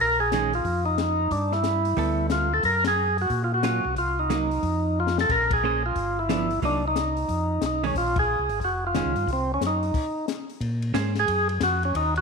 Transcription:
0.00 0.61 A#1 medium
0.00 0.19 A#4 medium
0.20 0.54 G#4 medium
0.32 0.51 D#3 medium
0.32 0.51 G#3 medium
0.32 0.52 C#4 medium
0.32 snare medium
0.32 closed hi-hat soft
0.53 0.85 F4 medium
0.53 open hi-hat soft
0.65 1.28 F2 medium
0.65 kick soft
0.65 open hi-hat soft
0.86 1.32 D#4 medium
0.98 snare medium
0.98 closed hi-hat soft
1.31 1.94 G2 medium
1.31 1.53 D4 medium
1.31 kick soft
1.31 open hi-hat soft
1.52 2.27 E4 medium
1.52 snare soft
1.64 snare medium
1.64 closed hi-hat soft
1.85 open hi-hat soft
1.97 2.60 D2 medium
1.97 2.47 G3 soft
1.97 2.48 B3 medium
1.97 2.48 A4 medium
1.97 kick soft
1.97 open hi-hat soft
2.30 2.53 F4 medium
2.30 snare medium
2.30 closed hi-hat soft
2.54 2.64 A4 medium
2.63 3.26 F#2 medium
2.63 2.84 A#4 medium
2.63 kick soft
2.63 open hi-hat soft
2.84 3.17 G#4 loud
2.84 snare medium
2.84 ride medium
3.18 3.42 F#4 medium
3.18 open hi-hat soft
3.30 3.81 A#2 medium
3.30 kick soft
3.30 open hi-hat soft
3.44 3.52 F4 medium
3.54 3.95 F#4 medium
3.63 3.82 F#3 soft
3.63 3.83 A#3 soft
3.63 3.83 C#4 soft
3.63 3.83 F4 medium
3.63 snare medium
3.63 closed hi-hat soft
3.85 3.96 B1 medium
3.96 4.60 C2 medium
3.96 4.19 F4 medium
3.96 kick soft
3.96 open hi-hat soft
4.19 4.99 D#4 medium
4.30 4.49 F#3 soft
4.30 4.49 A#3 medium
4.30 4.49 D#4 medium
4.30 snare soft
4.30 closed hi-hat soft
4.51 open hi-hat soft
4.63 5.26 F2 medium
4.63 kick soft
4.63 open hi-hat soft
5.00 5.18 F4 medium
5.07 snare soft
5.18 5.31 A4 medium
5.18 snare medium
5.29 5.92 A#1 medium
5.29 5.52 A#4 medium
5.29 kick medium
5.29 ride medium
5.51 5.83 G#4 medium
5.51 kick medium
5.51 ride medium
5.64 5.82 A#3 soft
5.64 5.82 C#4 soft
5.64 5.83 G#4 medium
5.64 5.83 C5 medium
5.86 6.19 F4 medium
5.96 6.59 G1 medium
5.96 kick soft
5.96 open hi-hat soft
6.19 6.60 E4 medium
6.29 6.48 F3 medium
6.29 6.49 B3 medium
6.29 6.49 D4 medium
6.29 snare medium
6.29 closed hi-hat soft
6.50 open hi-hat soft
6.62 7.25 C2 medium
6.62 6.81 F#3 soft
6.62 6.82 A#3 soft
6.62 6.85 D4 medium
6.62 6.82 D#4 soft
6.62 kick soft
6.62 open hi-hat soft
6.88 7.65 D#4 medium
6.96 snare medium
6.96 closed hi-hat soft
7.17 open hi-hat soft
7.29 7.59 F2 medium
7.29 kick soft
7.29 open hi-hat soft
7.61 7.92 B1 medium
7.61 snare medium
7.61 closed hi-hat soft
7.66 7.84 D#4 medium
7.84 7.94 D#3 medium
7.84 7.94 G#3 medium
7.84 7.94 C#4 medium
7.84 7.97 C#4 medium
7.84 open hi-hat soft
7.95 8.36 A#1 medium
7.95 8.18 F4 medium
7.95 kick soft
7.95 open hi-hat soft
8.16 8.60 G#4 medium
8.16 kick medium
8.16 ride medium
8.39 8.49 C2 medium
8.49 8.60 G#1 medium
8.49 open hi-hat soft
8.60 9.02 F1 medium
8.60 kick soft
8.60 open hi-hat soft
8.64 8.85 F#4 medium
8.87 9.31 F4 medium
8.94 9.14 D#3 soft
8.94 9.14 G#3 soft
8.94 9.14 C#4 medium
8.94 snare medium
8.94 closed hi-hat soft
9.05 9.15 C#2 medium
9.16 9.26 G2 medium
9.16 open hi-hat soft
9.27 9.58 C2 medium
9.27 kick soft
9.27 open hi-hat soft
9.33 9.52 C4 medium
9.54 9.64 C#4 medium
9.61 9.92 F#2 medium
9.61 snare medium
9.61 closed hi-hat soft
9.67 10.26 D#4 medium
9.83 open hi-hat soft
9.94 kick medium
9.94 open hi-hat soft
9.94 crash medium
10.28 snare medium
10.28 closed hi-hat soft
10.50 open hi-hat soft
10.60 10.92 A#2 medium
10.60 kick soft
10.60 ride medium
10.82 ride soft
10.94 11.26 G#2 medium
10.94 11.13 A#3 medium
10.94 11.13 C#4 medium
10.94 11.13 G#4 medium
10.94 11.13 C5 medium
10.94 kick soft
10.94 snare medium
10.94 hi-hat pedal soft
10.94 ride medium
11.15 snare soft
11.15 ride soft
11.20 11.48 G#4 loud
11.27 11.59 F#2 medium
11.27 kick soft
11.27 ride medium
11.49 ride soft
11.60 11.92 F2 medium
11.60 11.83 F#4 medium
11.60 kick soft
11.60 snare medium
11.60 hi-hat pedal medium
11.60 ride medium
11.83 11.95 C#4 medium
11.83 ride soft
11.94 12.21 D#2 medium
11.94 12.14 D#4 medium
11.94 kick soft
11.94 ride medium
12.16 12.21 F#4 medium
12.16 ride soft

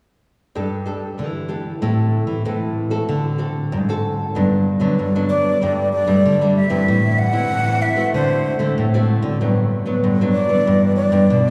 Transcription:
0.55 1.19 G2 medium
0.55 1.16 G3 soft
0.55 0.74 D4 soft
0.55 0.74 G4 soft
0.55 0.74 A4 soft
0.86 1.27 D4 soft
0.86 1.28 G4 soft
0.86 1.28 A4 soft
1.18 1.79 D3 soft
1.18 1.73 E3 medium
1.48 1.68 D4 soft
1.48 1.68 G4 soft
1.48 1.68 A4 soft
1.81 2.22 A2 medium
1.81 2.42 A3 soft
1.81 2.40 C4 soft
1.81 2.40 E4 soft
1.81 2.41 A4 soft
2.27 2.42 E3 medium
2.45 2.99 A2 medium
2.45 3.05 E3 soft
2.45 2.88 C4 soft
2.45 2.88 E4 soft
2.45 2.88 A4 medium
2.90 3.34 C4 soft
2.90 3.34 F#4 medium
2.90 3.35 A4 medium
3.09 3.72 D3 medium
3.09 3.69 D3 soft
3.38 3.82 C4 soft
3.38 3.82 F#4 soft
3.38 3.82 A4 soft
3.72 4.26 G#2 medium
3.89 4.31 C4 medium
3.89 4.31 F#4 medium
3.89 4.31 A4 medium
4.35 4.95 G2 soft
4.35 4.76 G2 medium
4.35 4.65 F#3 soft
4.35 4.65 B3 soft
4.35 4.65 D4 soft
4.80 4.95 D3 medium
4.80 5.08 F#3 medium
4.80 5.08 B3 medium
4.80 5.08 D4 medium
4.99 5.53 G2 medium
4.99 5.59 D3 soft
5.16 5.57 F#3 medium
5.16 5.58 B3 medium
5.16 5.58 D4 medium
5.29 5.89 D5 medium
5.61 6.22 G2 soft
5.61 6.03 G2 medium
5.61 6.04 G3 medium
5.61 6.04 A3 medium
5.61 6.04 D4 medium
5.93 6.52 D5 medium
6.06 6.22 G2 medium
6.06 6.35 G3 soft
6.06 6.35 A3 medium
6.06 6.35 D4 medium
6.25 6.85 D3 soft
6.25 6.66 D3 medium
6.41 6.68 G3 medium
6.41 6.68 A3 medium
6.41 6.68 D4 medium
6.56 7.20 E5 medium
6.70 6.85 G2 medium
6.70 7.29 E3 medium
6.70 7.29 C4 medium
6.70 7.30 E4 medium
6.88 7.48 A2 soft
6.88 7.42 A2 medium
7.19 7.83 F#5 loud
7.32 7.50 E3 medium
7.32 7.61 C4 medium
7.32 7.61 E4 medium
7.51 8.05 A2 medium
7.51 7.66 E3 soft
7.67 7.94 E3 medium
7.67 7.94 C4 medium
7.67 7.94 E4 medium
7.82 8.13 E5 medium
7.96 8.56 A3 medium
7.96 8.56 C4 medium
7.96 8.56 F#4 medium
8.14 8.74 D3 soft
8.14 8.55 D3 medium
8.14 8.73 C5 medium
8.59 8.74 D3 medium
8.59 8.87 A3 medium
8.59 8.88 C4 soft
8.59 8.88 F#4 medium
8.78 9.38 A2 soft
8.78 9.18 A2 medium
8.94 9.36 A3 medium
8.94 9.36 C4 medium
8.94 9.36 F#4 medium
9.22 9.37 D3 medium
9.41 10.01 G2 soft
9.41 9.94 G2 medium
9.41 9.83 F#3 soft
9.41 9.83 B3 soft
9.41 9.83 D4 soft
9.86 10.13 F#3 medium
9.86 10.14 B3 medium
9.86 10.14 D4 medium
10.04 10.57 G2 medium
10.04 10.64 D3 medium
10.21 10.47 F#3 medium
10.21 10.47 B3 medium
10.21 10.47 D4 medium
10.32 10.93 D5 medium
10.49 11.08 E3 medium
10.49 11.08 B3 soft
10.49 11.08 D4 medium
10.67 11.07 G2 medium
10.67 11.27 G2 medium
10.95 11.50 D5 medium
11.12 11.26 G2 medium
11.12 11.40 E3 medium
11.12 11.40 B3 medium
11.12 11.40 D4 medium
11.30 11.50 G2 soft
11.30 11.50 B2 medium

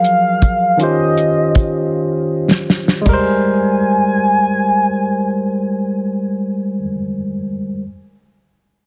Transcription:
0.00 0.76 F3 soft
0.00 0.75 F#3 medium
0.00 0.77 G#4 soft
0.00 0.78 A#4 medium
0.00 0.84 F5 loud
0.04 closed hi-hat soft
0.42 kick medium
0.42 closed hi-hat medium
0.77 3.01 D#3 medium
0.77 3.02 C#4 soft
0.77 3.03 F4 soft
0.77 closed hi-hat medium
0.82 3.03 G4 soft
0.82 3.04 C5 medium
0.82 2.32 D#5 medium
1.18 closed hi-hat soft
1.55 kick medium
1.55 closed hi-hat soft
2.51 snare medium
2.70 snare medium
2.88 snare medium
3.01 6.78 G3 medium
3.01 6.76 G#3 medium
3.06 6.80 A#4 medium
3.06 6.10 G#5 medium
3.06 kick medium
3.06 floor tom medium
3.06 splash medium
3.14 6.82 C5 medium

